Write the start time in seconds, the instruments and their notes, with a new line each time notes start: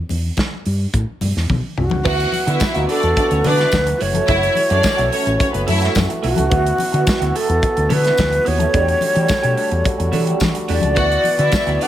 0.09 fingered electric bass E2, open hi-hat, muted conga
0.37 kick, snare, closed hi-hat, high conga
0.66 fingered electric bass G2, open hi-hat
0.93 fingered electric bass A2, kick, closed hi-hat, muted conga
1.21 fingered electric bass G2, open hi-hat, muted conga, low conga
1.36 fingered electric bass E2, snare
1.50 fingered electric bass B1, kick, high tom, high conga
1.78 fingered electric bass C2, alto flute F#4, mid tom
1.90 fingered electric bass C#2, floor tom, high conga
2.05 fingered electric bass D2, french horn section E3 B3 F#4, clean electric guitar B3 E4 F#4, string section F#4 F#5, kick, crash
2.20 closed hi-hat
2.32 muted clean electric guitar stroke, open hi-hat, muted conga
2.47 fingered electric bass D3, clean electric guitar B3 E4 F#4, string section E4 E5, closed hi-hat
2.60 muted clean electric guitar stroke, kick, snare, closed hi-hat, tambourine, high conga
2.75 fingered electric bass D2, clean electric guitar B3 E4 F#4, closed hi-hat
2.89 clean electric guitar B3 E4 A4, string section D4 D5, alto flute A4, open hi-hat
3.03 fingered electric bass E2, muted clean electric guitar stroke, closed hi-hat
3.16 string section D4 D5, muted clean electric guitar stroke, kick, closed hi-hat, muted conga
3.30 fingered electric bass D2, string section C#4 C#5, muted clean electric guitar stroke, closed hi-hat
3.44 fingered electric bass D3, clean electric guitar B3 E4 A4, string section D4 D5, alto flute B4, open hi-hat, muted conga, low conga
3.58 clean electric guitar B3 E4 F#4, snare, closed hi-hat
3.72 fingered electric bass D2, kick, snare, closed hi-hat, tambourine, high conga
3.87 muted clean electric guitar stroke, closed hi-hat
4.00 fingered electric bass F#1, french horn section A3 F#4, clean electric guitar A3 E4 F#4, alto flute C#5, open hi-hat
4.13 clean electric guitar A3 E4 A4, closed hi-hat, high conga
4.28 fingered electric bass F#1, clean electric guitar A3 E4 F#4, string section E4 E5, kick, closed hi-hat
4.43 closed hi-hat
4.55 muted clean electric guitar stroke, open hi-hat, muted conga
4.69 fingered electric bass F#2, clean electric guitar A3 E4 F#4, string section D4 D5, closed hi-hat
4.83 muted clean electric guitar stroke, kick, snare, closed hi-hat, tambourine, high conga
4.97 fingered electric bass B1, clean electric guitar A3 E4 F#4, closed hi-hat
5.11 clean electric guitar A3 E4 A4, string section C#4 C#5, open hi-hat
5.25 fingered electric bass A1, muted clean electric guitar stroke, closed hi-hat
5.39 string section C#4 C#5, muted clean electric guitar stroke, kick, closed hi-hat, muted conga
5.53 fingered electric bass F#1, string section B3 B4, muted clean electric guitar stroke, closed hi-hat
5.67 fingered electric bass F#2, clean electric guitar A3 E4 A4, string section E4 E5, open hi-hat, muted conga
5.81 clean electric guitar A3 E4 F#4, snare, closed hi-hat
5.95 fingered electric bass F#2, muted clean electric guitar stroke, kick, snare, closed hi-hat, tambourine, high conga
6.09 muted clean electric guitar stroke, closed hi-hat
6.23 fingered electric bass B1, clean electric guitar A3 E4 F#4, alto flute F#4, open hi-hat
6.36 fingered electric bass C#2, clean electric guitar A3 E4 A4, closed hi-hat, high conga
6.50 fingered electric bass D2, clean electric guitar B3 E4 F#4, french horn section B3, kick, closed hi-hat
6.66 closed hi-hat
6.78 muted clean electric guitar stroke, open hi-hat, muted conga
6.92 fingered electric bass D3, clean electric guitar B3 E4 F#4, closed hi-hat
7.06 muted clean electric guitar stroke, kick, snare, closed hi-hat, tambourine, high conga
7.20 fingered electric bass D2, clean electric guitar B3 E4 F#4, closed hi-hat
7.34 clean electric guitar B3 E4 A4, alto flute A4, open hi-hat
7.48 fingered electric bass E2, muted clean electric guitar stroke, closed hi-hat
7.62 muted clean electric guitar stroke, kick, closed hi-hat, muted conga
7.76 fingered electric bass D2, muted clean electric guitar stroke, closed hi-hat
7.89 fingered electric bass D3, clean electric guitar B3 E4 A4, alto flute B4, open hi-hat, muted conga, low conga
8.04 clean electric guitar B3 E4 F#4, snare, closed hi-hat
8.17 fingered electric bass D2, muted clean electric guitar stroke, kick, snare, closed hi-hat, tambourine, high conga
8.31 muted clean electric guitar stroke, closed hi-hat
8.45 fingered electric bass D#2, clean electric guitar B3 E4 F#4, alto flute C#5, open hi-hat
8.59 clean electric guitar B3 E4 A4, closed hi-hat, high conga
8.73 fingered electric bass E2, french horn section D3 G3 A3, clean electric guitar A3 D4 G4, kick, closed hi-hat
8.88 closed hi-hat
9.01 muted clean electric guitar stroke, open hi-hat, muted conga
9.14 fingered electric bass E3, clean electric guitar A3 D4 G4, closed hi-hat
9.28 muted clean electric guitar stroke, kick, snare, closed hi-hat, tambourine, high conga
9.42 fingered electric bass B2, clean electric guitar A3 D4 G4, closed hi-hat
9.56 clean electric guitar A3 D4 A4, open hi-hat
9.71 fingered electric bass E2, muted clean electric guitar stroke, closed hi-hat
9.84 muted clean electric guitar stroke, kick, closed hi-hat, muted conga
9.98 fingered electric bass E2, muted clean electric guitar stroke, closed hi-hat
10.12 fingered electric bass E3, clean electric guitar A3 D4 A4, open hi-hat, muted conga, low conga
10.27 clean electric guitar A3 D4 G4, closed hi-hat
10.40 fingered electric bass E3, muted clean electric guitar stroke, kick, snare, closed hi-hat, tambourine, high conga
10.54 muted clean electric guitar stroke, closed hi-hat
10.68 fingered electric bass E2, clean electric guitar A3 D4 G4, alto flute D5, open hi-hat
10.81 fingered electric bass C#2, clean electric guitar A3 D4 A4, closed hi-hat, high conga
10.96 fingered electric bass D2, french horn section E3 B3, clean electric guitar B3 E4 F#4, string section F#4 F#5, kick, closed hi-hat
11.12 closed hi-hat
11.24 muted clean electric guitar stroke, open hi-hat, muted conga
11.38 fingered electric bass D3, clean electric guitar B3 E4 F#4, string section E4 E5, closed hi-hat
11.52 muted clean electric guitar stroke, kick, snare, closed hi-hat, tambourine, high conga
11.67 fingered electric bass D2, clean electric guitar B3 E4 F#4, closed hi-hat
11.80 clean electric guitar B3 E4 A4, string section D4 D5, alto flute F#5, open hi-hat